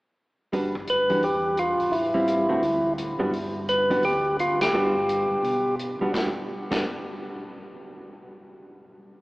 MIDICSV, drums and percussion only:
0, 0, Header, 1, 2, 480
1, 0, Start_track
1, 0, Key_signature, 1, "major"
1, 0, Tempo, 350672
1, 713, Time_signature, 4, 2, 24, 8
1, 12611, End_track
2, 0, Start_track
2, 0, Title_t, "Drums"
2, 726, Note_on_c, 9, 46, 36
2, 863, Note_off_c, 9, 46, 0
2, 1031, Note_on_c, 9, 36, 49
2, 1168, Note_off_c, 9, 36, 0
2, 1196, Note_on_c, 9, 42, 43
2, 1333, Note_off_c, 9, 42, 0
2, 1498, Note_on_c, 9, 46, 29
2, 1635, Note_off_c, 9, 46, 0
2, 1678, Note_on_c, 9, 46, 35
2, 1815, Note_off_c, 9, 46, 0
2, 2151, Note_on_c, 9, 42, 42
2, 2288, Note_off_c, 9, 42, 0
2, 2459, Note_on_c, 9, 46, 30
2, 2596, Note_off_c, 9, 46, 0
2, 2637, Note_on_c, 9, 46, 36
2, 2774, Note_off_c, 9, 46, 0
2, 3115, Note_on_c, 9, 42, 46
2, 3252, Note_off_c, 9, 42, 0
2, 3594, Note_on_c, 9, 46, 35
2, 3731, Note_off_c, 9, 46, 0
2, 4079, Note_on_c, 9, 42, 43
2, 4216, Note_off_c, 9, 42, 0
2, 4562, Note_on_c, 9, 46, 34
2, 4699, Note_off_c, 9, 46, 0
2, 5043, Note_on_c, 9, 42, 45
2, 5180, Note_off_c, 9, 42, 0
2, 5347, Note_on_c, 9, 46, 30
2, 5484, Note_off_c, 9, 46, 0
2, 5513, Note_on_c, 9, 46, 37
2, 5650, Note_off_c, 9, 46, 0
2, 6011, Note_on_c, 9, 42, 45
2, 6148, Note_off_c, 9, 42, 0
2, 6310, Note_on_c, 9, 51, 52
2, 6314, Note_on_c, 9, 38, 66
2, 6447, Note_off_c, 9, 51, 0
2, 6451, Note_off_c, 9, 38, 0
2, 6966, Note_on_c, 9, 42, 45
2, 7103, Note_off_c, 9, 42, 0
2, 7450, Note_on_c, 9, 46, 35
2, 7587, Note_off_c, 9, 46, 0
2, 7928, Note_on_c, 9, 42, 43
2, 8065, Note_off_c, 9, 42, 0
2, 8406, Note_on_c, 9, 38, 65
2, 8407, Note_on_c, 9, 36, 75
2, 8543, Note_off_c, 9, 38, 0
2, 8544, Note_off_c, 9, 36, 0
2, 9192, Note_on_c, 9, 38, 68
2, 9192, Note_on_c, 9, 49, 72
2, 9194, Note_on_c, 9, 36, 83
2, 9329, Note_off_c, 9, 38, 0
2, 9329, Note_off_c, 9, 49, 0
2, 9331, Note_off_c, 9, 36, 0
2, 12611, End_track
0, 0, End_of_file